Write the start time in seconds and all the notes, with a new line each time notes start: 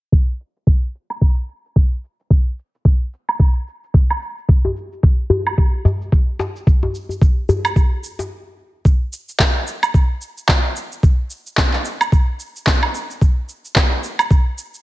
0.12 kick
0.40 shaker
0.56 shaker
0.67 kick
0.95 shaker
1.10 low woodblock, shaker
1.21 kick, shaker
1.49 shaker
1.65 shaker
1.76 kick, shaker
2.04 shaker
2.20 shaker
2.30 kick, shaker
2.58 shaker
2.74 shaker
2.85 kick, shaker
3.13 shaker
3.29 low woodblock, shaker
3.40 kick, shaker
3.68 shaker
3.84 shaker
3.94 kick, shaker
4.10 low woodblock
4.22 shaker
4.38 shaker
4.49 kick, shaker
4.65 djembe tone
4.76 shaker
4.92 shaker
5.03 kick, shaker
5.30 djembe slap, djembe bass, shaker
5.47 low woodblock, shaker
5.58 kick, shaker
5.85 djembe slap, djembe tone, djembe bass, shaker
6.02 shaker
6.12 kick, shaker
6.39 djembe slap, shaker
6.56 shaker
6.67 kick, shaker
6.83 djembe tone
6.95 shaker
7.09 djembe tone, shaker
7.22 kick, shaker
7.49 djembe slap, djembe bass, shaker
7.65 low woodblock, shaker
7.76 kick, shaker
8.04 shaker
8.19 djembe slap, shaker
8.85 kick, shaker
9.13 shaker
9.29 shaker
9.39 kick, clap, shaker
9.67 shaker
9.83 low woodblock, shaker
9.94 kick, shaker
10.22 shaker
10.38 shaker
10.49 kick, clap, shaker
10.76 shaker
10.92 shaker
11.03 kick, shaker
11.30 shaker
11.46 shaker
11.57 kick, clap, shaker
11.73 clap
11.85 shaker
12.01 low woodblock, shaker
12.12 kick, shaker
12.40 shaker
12.56 shaker
12.67 kick, clap, shaker
12.83 low woodblock
12.95 shaker
13.11 shaker
13.21 kick, shaker
13.49 shaker
13.65 shaker
13.76 kick, clap, shaker
14.04 shaker
14.19 low woodblock, shaker
14.31 kick, shaker
14.58 shaker
14.74 shaker